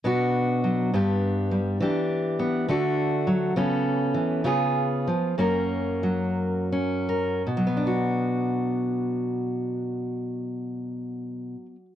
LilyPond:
\new Staff \with { instrumentName = "Steel-string acoustic guitar" } { \time 6/8 \key b \minor \tempo 4. = 63 << { <b d' fis'>4. <b d' g'>4. | <d' g'>4. <a d' fis'>4. | <b cis' a'>4. <b eis' gis'>4. | <ais cis' ais'>2 cis'8 ais'8 |
<fis b d' fis'>2.~ | <fis b d' fis'>2. | } \\ { b,4 fis8 g,4 g8 | e4 b8 d4 fis8 | cis4 e8 cis4 eis8 | fis,4 fis2 |
b,2.~ | b,2. | } >> }